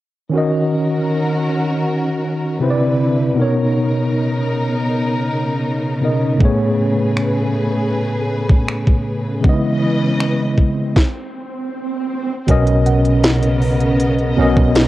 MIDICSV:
0, 0, Header, 1, 7, 480
1, 0, Start_track
1, 0, Key_signature, 5, "major"
1, 0, Tempo, 759494
1, 207, Time_signature, 4, 2, 24, 8
1, 9403, End_track
2, 0, Start_track
2, 0, Title_t, "Synth pluck"
2, 0, Program_c, 0, 84
2, 8128, Note_on_c, 0, 78, 54
2, 8965, Note_off_c, 0, 78, 0
2, 9403, End_track
3, 0, Start_track
3, 0, Title_t, "String section"
3, 0, Program_c, 1, 48
3, 207, Note_on_c, 1, 61, 68
3, 209, Note_on_c, 1, 51, 72
3, 209, Note_on_c, 1, 66, 72
3, 209, Note_on_c, 1, 70, 82
3, 1633, Note_off_c, 1, 61, 0
3, 1634, Note_off_c, 1, 51, 0
3, 1634, Note_off_c, 1, 66, 0
3, 1634, Note_off_c, 1, 70, 0
3, 1650, Note_on_c, 1, 50, 70
3, 1651, Note_on_c, 1, 60, 62
3, 1651, Note_on_c, 1, 64, 60
3, 1652, Note_on_c, 1, 71, 75
3, 2124, Note_off_c, 1, 50, 0
3, 2124, Note_off_c, 1, 60, 0
3, 2125, Note_off_c, 1, 64, 0
3, 2125, Note_off_c, 1, 71, 0
3, 2126, Note_on_c, 1, 70, 84
3, 2127, Note_on_c, 1, 63, 74
3, 2128, Note_on_c, 1, 49, 81
3, 2128, Note_on_c, 1, 59, 75
3, 4028, Note_off_c, 1, 63, 0
3, 4028, Note_off_c, 1, 70, 0
3, 4029, Note_off_c, 1, 59, 0
3, 4050, Note_on_c, 1, 68, 76
3, 4050, Note_on_c, 1, 71, 84
3, 4051, Note_on_c, 1, 57, 69
3, 5943, Note_off_c, 1, 49, 0
3, 5949, Note_off_c, 1, 68, 0
3, 5949, Note_off_c, 1, 71, 0
3, 5950, Note_off_c, 1, 57, 0
3, 5965, Note_on_c, 1, 52, 80
3, 5966, Note_on_c, 1, 61, 71
3, 5966, Note_on_c, 1, 71, 72
3, 5967, Note_on_c, 1, 75, 90
3, 6917, Note_off_c, 1, 52, 0
3, 6917, Note_off_c, 1, 61, 0
3, 6917, Note_off_c, 1, 71, 0
3, 6918, Note_off_c, 1, 75, 0
3, 7886, Note_on_c, 1, 75, 93
3, 7887, Note_on_c, 1, 59, 78
3, 7887, Note_on_c, 1, 70, 79
3, 7889, Note_on_c, 1, 49, 85
3, 9403, Note_off_c, 1, 49, 0
3, 9403, Note_off_c, 1, 59, 0
3, 9403, Note_off_c, 1, 70, 0
3, 9403, Note_off_c, 1, 75, 0
3, 9403, End_track
4, 0, Start_track
4, 0, Title_t, "Tine electric piano"
4, 0, Program_c, 2, 4
4, 188, Note_on_c, 2, 51, 71
4, 201, Note_on_c, 2, 61, 62
4, 213, Note_on_c, 2, 66, 61
4, 226, Note_on_c, 2, 70, 62
4, 238, Note_on_c, 2, 75, 73
4, 341, Control_c, 2, 64, 127
4, 1612, Note_off_c, 2, 51, 0
4, 1619, Note_off_c, 2, 61, 0
4, 1625, Note_off_c, 2, 66, 0
4, 1631, Note_off_c, 2, 70, 0
4, 1638, Note_off_c, 2, 75, 0
4, 1641, Note_on_c, 2, 48, 68
4, 1648, Note_on_c, 2, 60, 65
4, 1654, Note_on_c, 2, 64, 65
4, 1656, Control_c, 2, 64, 0
4, 1661, Note_on_c, 2, 71, 60
4, 1667, Note_on_c, 2, 72, 61
4, 1698, Note_off_c, 2, 72, 0
4, 1708, Note_on_c, 2, 74, 74
4, 1783, Control_c, 2, 64, 127
4, 2108, Note_on_c, 2, 47, 66
4, 2121, Note_on_c, 2, 59, 61
4, 2124, Note_off_c, 2, 48, 0
4, 2127, Note_off_c, 2, 60, 0
4, 2130, Note_off_c, 2, 64, 0
4, 2133, Note_on_c, 2, 63, 60
4, 2134, Note_off_c, 2, 71, 0
4, 2136, Control_c, 2, 64, 0
4, 2145, Note_on_c, 2, 70, 61
4, 2158, Note_off_c, 2, 74, 0
4, 2158, Note_on_c, 2, 73, 78
4, 2230, Control_c, 2, 64, 127
4, 3772, Note_off_c, 2, 47, 0
4, 3779, Note_off_c, 2, 59, 0
4, 3785, Note_off_c, 2, 63, 0
4, 3791, Note_off_c, 2, 70, 0
4, 3798, Note_off_c, 2, 73, 0
4, 3799, Note_on_c, 2, 47, 53
4, 3806, Note_on_c, 2, 59, 49
4, 3812, Note_on_c, 2, 63, 46
4, 3818, Note_on_c, 2, 70, 51
4, 3823, Note_on_c, 2, 75, 59
4, 4027, Note_on_c, 2, 45, 66
4, 4039, Note_on_c, 2, 57, 64
4, 4043, Note_off_c, 2, 47, 0
4, 4044, Note_off_c, 2, 59, 0
4, 4050, Note_off_c, 2, 63, 0
4, 4052, Note_on_c, 2, 59, 64
4, 4053, Note_off_c, 2, 70, 0
4, 4055, Note_off_c, 2, 75, 0
4, 4056, Control_c, 2, 64, 0
4, 4065, Note_on_c, 2, 68, 60
4, 4077, Note_on_c, 2, 73, 80
4, 4172, Control_c, 2, 64, 127
4, 5932, Note_off_c, 2, 45, 0
4, 5938, Note_off_c, 2, 57, 0
4, 5944, Note_off_c, 2, 59, 0
4, 5948, Note_on_c, 2, 49, 69
4, 5951, Note_off_c, 2, 68, 0
4, 5957, Note_off_c, 2, 73, 0
4, 5960, Note_on_c, 2, 56, 64
4, 5972, Note_on_c, 2, 59, 66
4, 5975, Control_c, 2, 64, 0
4, 5985, Note_on_c, 2, 63, 50
4, 5999, Note_on_c, 2, 75, 76
4, 6017, Note_off_c, 2, 63, 0
4, 6026, Note_on_c, 2, 64, 65
4, 6082, Control_c, 2, 64, 127
4, 6898, Note_off_c, 2, 49, 0
4, 6904, Note_off_c, 2, 56, 0
4, 6911, Note_off_c, 2, 59, 0
4, 6924, Note_off_c, 2, 75, 0
4, 6934, Control_c, 2, 64, 0
4, 6938, Note_off_c, 2, 64, 0
4, 7879, Note_on_c, 2, 47, 87
4, 7886, Note_on_c, 2, 59, 77
4, 7892, Note_on_c, 2, 61, 79
4, 7899, Note_on_c, 2, 70, 77
4, 7905, Note_on_c, 2, 75, 92
4, 8018, Control_c, 2, 64, 127
4, 8779, Note_off_c, 2, 47, 0
4, 8782, Note_off_c, 2, 59, 0
4, 8785, Note_off_c, 2, 61, 0
4, 8789, Note_off_c, 2, 70, 0
4, 8792, Note_off_c, 2, 75, 0
4, 9080, Note_on_c, 2, 47, 92
4, 9086, Note_on_c, 2, 59, 81
4, 9093, Note_on_c, 2, 61, 82
4, 9099, Note_on_c, 2, 70, 79
4, 9106, Note_on_c, 2, 75, 99
4, 9403, Note_off_c, 2, 47, 0
4, 9403, Note_off_c, 2, 59, 0
4, 9403, Note_off_c, 2, 61, 0
4, 9403, Note_off_c, 2, 70, 0
4, 9403, Note_off_c, 2, 75, 0
4, 9403, End_track
5, 0, Start_track
5, 0, Title_t, "808-style bass"
5, 0, Program_c, 3, 38
5, 7890, Note_on_c, 3, 35, 113
5, 9063, Note_off_c, 3, 35, 0
5, 9090, Note_on_c, 3, 35, 94
5, 9204, Note_off_c, 3, 35, 0
5, 9209, Note_on_c, 3, 35, 102
5, 9403, Note_off_c, 3, 35, 0
5, 9403, End_track
6, 0, Start_track
6, 0, Title_t, "Swell"
6, 0, Program_c, 4, 103
6, 5967, Note_on_c, 4, 60, 78
6, 7887, Note_off_c, 4, 60, 0
6, 9403, End_track
7, 0, Start_track
7, 0, Title_t, "Drums"
7, 4048, Note_on_c, 9, 36, 112
7, 4111, Note_off_c, 9, 36, 0
7, 4529, Note_on_c, 9, 26, 97
7, 4593, Note_off_c, 9, 26, 0
7, 5368, Note_on_c, 9, 36, 93
7, 5432, Note_off_c, 9, 36, 0
7, 5489, Note_on_c, 9, 26, 114
7, 5552, Note_off_c, 9, 26, 0
7, 5608, Note_on_c, 9, 36, 97
7, 5671, Note_off_c, 9, 36, 0
7, 5968, Note_on_c, 9, 36, 113
7, 6031, Note_off_c, 9, 36, 0
7, 6449, Note_on_c, 9, 26, 102
7, 6512, Note_off_c, 9, 26, 0
7, 6684, Note_on_c, 9, 36, 86
7, 6747, Note_off_c, 9, 36, 0
7, 6927, Note_on_c, 9, 36, 104
7, 6929, Note_on_c, 9, 38, 83
7, 6990, Note_off_c, 9, 36, 0
7, 6992, Note_off_c, 9, 38, 0
7, 7887, Note_on_c, 9, 42, 81
7, 7888, Note_on_c, 9, 36, 110
7, 7950, Note_off_c, 9, 42, 0
7, 7951, Note_off_c, 9, 36, 0
7, 8006, Note_on_c, 9, 42, 52
7, 8069, Note_off_c, 9, 42, 0
7, 8127, Note_on_c, 9, 42, 66
7, 8191, Note_off_c, 9, 42, 0
7, 8248, Note_on_c, 9, 42, 48
7, 8311, Note_off_c, 9, 42, 0
7, 8366, Note_on_c, 9, 42, 67
7, 8368, Note_on_c, 9, 38, 104
7, 8429, Note_off_c, 9, 42, 0
7, 8431, Note_off_c, 9, 38, 0
7, 8486, Note_on_c, 9, 42, 56
7, 8550, Note_off_c, 9, 42, 0
7, 8607, Note_on_c, 9, 46, 47
7, 8670, Note_off_c, 9, 46, 0
7, 8725, Note_on_c, 9, 42, 51
7, 8788, Note_off_c, 9, 42, 0
7, 8847, Note_on_c, 9, 42, 76
7, 8911, Note_off_c, 9, 42, 0
7, 8966, Note_on_c, 9, 42, 47
7, 9029, Note_off_c, 9, 42, 0
7, 9207, Note_on_c, 9, 36, 104
7, 9271, Note_off_c, 9, 36, 0
7, 9325, Note_on_c, 9, 42, 77
7, 9328, Note_on_c, 9, 38, 126
7, 9388, Note_off_c, 9, 42, 0
7, 9391, Note_off_c, 9, 38, 0
7, 9403, End_track
0, 0, End_of_file